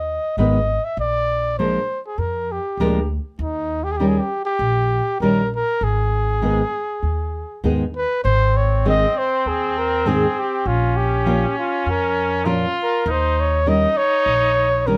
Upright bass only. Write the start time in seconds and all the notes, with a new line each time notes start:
Already playing: D#2
0.37 G#1
0.97 A#1
2.18 F2
2.77 D2
3.39 D#2
4.59 A#1
5.20 A#1
5.81 G#1
7.03 D#2
7.64 D#2
8.25 G#1
9.46 D#2
10.66 A#1
11.86 F2
13.06 D#2
14.26 A#1